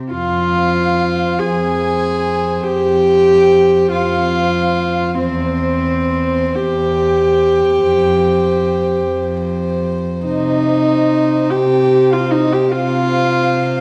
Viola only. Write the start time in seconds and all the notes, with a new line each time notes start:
0.11 F4
1.39 G#4
2.63 G4
3.92 F4
5.19 C4
6.54 G4
10.25 D#4
11.50 G4
12.13 F4
12.31 D#4
12.53 G4
12.71 F4